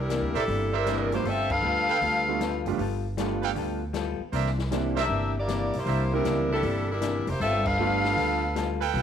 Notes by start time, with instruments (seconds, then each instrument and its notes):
Already playing: upright bass C2
0.00 saxophone section G3 D4 E4 A#4
0.10 hollow-body jazz guitar C3 E3 A#3 D4, snare, closed hi-hat
0.22 upright bass D2
0.34 upright bass A#1, saxophone section G3 D4 E4 A4, trumpet section A#4 C5 D5 E5, open hi-hat
0.48 upright bass G1, hollow-body jazz guitar C3 E3 A#3 D4, kick, open hi-hat
0.72 saxophone section G3 D4 E4 A#4, trumpet section A#4 C5 D5 E5
0.86 hollow-body jazz guitar C3 E3 A#3 D4, snare, closed hi-hat
1.12 grand piano G3 A3 B3 D4 F4, saxophone section A#3 E4 G4 C5, open hi-hat
1.24 upright bass G1, hollow-body jazz guitar G3 B3 F4 A4, saxophone section C4 F4 A4 E5, kick, open hi-hat
1.50 saxophone section D4 A4 B4 F5, kick, crash
1.62 upright bass D2, hollow-body jazz guitar G3 B3 F4 A4
1.89 trumpet section A4 B4 F5 G5, open hi-hat
2.01 upright bass D2, hollow-body jazz guitar G3 B3 F4 A4, kick, open hi-hat
2.28 grand piano G3 A3 B3 D4 F4
2.41 hollow-body jazz guitar G3 B3 F4 A4, snare, closed hi-hat
2.65 upright bass F#1, grand piano G3 A3 B3 D4 F4, open hi-hat
2.78 upright bass G1, hollow-body jazz guitar G3 B3 F4 A4, kick, open hi-hat
3.17 hollow-body jazz guitar G3 B3 F4 A4, grand piano G3 A3 B3 D4 F4, snare, closed hi-hat
3.42 trumpet section A4 B4 F5 G5, open hi-hat
3.55 upright bass D2, hollow-body jazz guitar G3 B3 F4 A4, kick, open hi-hat
3.93 hollow-body jazz guitar G3 B3 F4 A4, snare, closed hi-hat
4.19 muted upright bass stroke
4.32 upright bass C2, hollow-body jazz guitar C3 E3 A#3 D4, trumpet section A#4 C5 D5 E5, kick, open hi-hat
4.46 snare
4.59 snare
4.71 hollow-body jazz guitar C3 E3 A#3 D4, grand piano G3 A#3 C4 D4 E4, snare, closed hi-hat
4.96 saxophone section G4 A#4, trumpet section A#4 C5 D5 E5, snare, ride
5.00 saxophone section D4 E5
5.09 upright bass G1, hollow-body jazz guitar C3 E3 A#3 D4
5.39 saxophone section A#3 E4 G4 D5
5.48 hollow-body jazz guitar C3 E3 A#3 D4, snare, closed hi-hat
5.73 upright bass B1, saxophone section A#3 C5, open hi-hat
5.77 saxophone section E4 G4
5.86 upright bass C2, hollow-body jazz guitar C3 E3 A#3, trumpet section A#4 C5 D5 E5, kick, open hi-hat
5.90 hollow-body jazz guitar D4
6.13 grand piano G3 A#3 C4 D4 E4, saxophone section G3 D4 E4 A#4
6.25 upright bass C#2, hollow-body jazz guitar C3 E3 A#3 D4, snare, closed hi-hat
6.52 saxophone section G3 D4 E4 A4
6.63 upright bass G1, hollow-body jazz guitar C3 E3 A#3 D4, kick, open hi-hat
6.92 saxophone section G3 D4 E4 A#4
7.01 hollow-body jazz guitar C3 E3 A#3 D4, snare, closed hi-hat
7.27 upright bass F1, saxophone section A#3 E4 G4 C5, open hi-hat
7.40 upright bass G1, hollow-body jazz guitar G3 B3 F4 A4, saxophone section C4 F4 A4 E5, kick, open hi-hat
7.66 saxophone section D4 A4 B4 F5, kick, crash
7.78 hollow-body jazz guitar G3 B3 F4 A4, grand piano G3 A3 B3 D4 F4
8.04 snare, open hi-hat
8.17 upright bass D2, hollow-body jazz guitar G3 B3 F4 A4, kick, open hi-hat
8.55 hollow-body jazz guitar G3 B3 F4 A4, snare, closed hi-hat
8.80 trumpet section A4 B4 F5 G5, open hi-hat
8.94 upright bass B1, hollow-body jazz guitar G3 B3 F4 A4, kick, open hi-hat